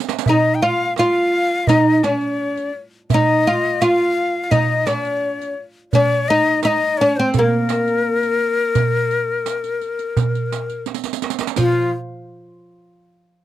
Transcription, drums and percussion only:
0.00 riq
0.09 riq, darbuka ka
0.19 riq
0.26 riq, darbuka dum
0.96 riq, darbuka tek
1.67 riq, darbuka dum
2.03 riq, darbuka tek
2.21 riq, darbuka ka
2.57 riq, darbuka ka
3.10 riq, darbuka dum
3.46 riq, darbuka ka
3.82 riq, darbuka tek
4.52 riq, darbuka dum
4.87 riq, darbuka tek
5.04 riq, darbuka ka
5.40 riq, darbuka ka
5.93 riq, darbuka dum
6.28 riq, darbuka ka
6.63 riq, darbuka tek
7.34 riq, darbuka dum
7.69 riq, darbuka tek
7.87 riq, darbuka ka
8.23 riq, darbuka ka
8.75 riq, darbuka dum
9.11 riq
9.46 riq, darbuka tek
9.63 riq, darbuka ka
9.81 riq, darbuka ka
9.99 riq
10.17 riq, darbuka dum
10.34 riq, darbuka ka
10.52 riq, darbuka tek
10.70 riq, darbuka ka
10.86 riq, darbuka tek
10.94 riq
11.04 riq, darbuka ka
11.13 riq
11.22 riq, darbuka tek
11.30 riq
11.39 riq, darbuka ka
11.47 riq
11.56 riq, darbuka dum

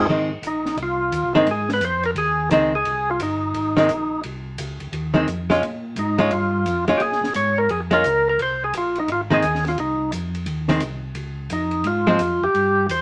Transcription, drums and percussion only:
0.43 hi-hat pedal, ride
0.66 snare
0.77 ride
1.12 hi-hat pedal, ride
1.47 ride
1.69 snare
1.81 hi-hat pedal, ride
2.03 ride
2.16 ride
2.51 hi-hat pedal, ride
2.85 ride
3.20 hi-hat pedal, ride
3.54 ride
3.77 snare
3.89 hi-hat pedal, ride
4.23 ride
4.58 hi-hat pedal, ride
4.80 ride
4.93 ride
5.28 hi-hat pedal, ride
5.50 snare
5.63 ride
5.96 hi-hat pedal, ride
6.18 ride
6.31 ride
6.66 hi-hat pedal, ride
6.88 ride
7.00 ride
7.12 snare
7.24 snare
7.34 hi-hat pedal, ride
7.69 ride
7.91 ride
8.04 hi-hat pedal, ride
8.39 ride
8.73 hi-hat pedal, ride
8.95 ride
9.08 ride
9.42 hi-hat pedal, ride
9.55 snare
9.65 snare, ride
9.78 ride
10.12 hi-hat pedal, ride
10.35 ride
10.46 ride
10.68 snare
10.80 hi-hat pedal, ride
11.15 ride
11.50 hi-hat pedal, ride
11.71 ride
11.84 ride
12.19 hi-hat pedal, ride
12.55 ride
12.89 hi-hat pedal, ride

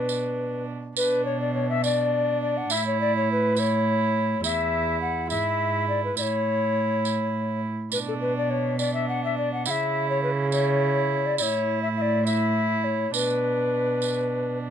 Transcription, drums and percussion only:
0.09 tambourine
0.97 tambourine
1.84 tambourine
2.70 tambourine
3.56 tambourine
4.44 tambourine
5.30 tambourine
6.17 tambourine
7.05 tambourine
7.92 tambourine
8.79 tambourine
9.66 tambourine
10.52 tambourine
11.38 tambourine
12.27 tambourine
13.14 tambourine
14.02 tambourine

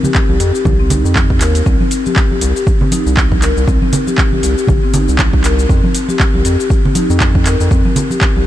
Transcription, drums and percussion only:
0.03 high conga, low conga, cabasa
0.15 kick, clap, cabasa
0.29 high conga
0.40 open hi-hat, cabasa
0.55 cabasa
0.65 kick, high conga, low conga, cabasa
0.90 open hi-hat, low conga, cabasa
1.06 cabasa
1.16 kick, clap, high conga, cabasa
1.30 kick
1.41 clap, open hi-hat, cabasa
1.55 open hi-hat, cabasa
1.66 kick, cabasa
1.81 high conga
1.91 open hi-hat, cabasa
2.06 high conga, cabasa
2.16 kick, clap, cabasa
2.31 high conga
2.41 open hi-hat, cabasa
2.56 cabasa
2.67 kick, cabasa
2.81 low conga
2.92 open hi-hat, high conga, cabasa
3.07 cabasa
3.17 kick, clap, cabasa
3.31 kick, high conga
3.42 clap, open hi-hat, cabasa
3.57 cabasa
3.68 kick, cabasa
3.82 high conga
3.93 open hi-hat, low conga, cabasa
4.07 high conga, cabasa
4.18 kick, clap, cabasa
4.33 high conga
4.43 open hi-hat, cabasa
4.58 cabasa
4.67 kick, high conga, low conga, cabasa
4.94 open hi-hat, low conga, cabasa
5.09 cabasa
5.19 kick, clap, high conga, cabasa
5.33 kick
5.44 clap, open hi-hat, cabasa
5.59 cabasa
5.69 kick, cabasa
5.84 high conga
5.95 open hi-hat, cabasa
6.08 high conga, cabasa
6.20 kick, clap, cabasa
6.34 high conga
6.45 open hi-hat, cabasa
6.60 cabasa
6.70 kick, cabasa
6.85 low conga
6.95 open hi-hat, high conga, cabasa
7.10 cabasa
7.20 kick, clap, cabasa
7.35 kick, high conga
7.46 clap, open hi-hat, cabasa
7.61 cabasa
7.71 kick, cabasa
7.85 high conga
7.96 open hi-hat, low conga, cabasa
8.11 high conga, cabasa
8.21 kick, clap, cabasa
8.36 high conga

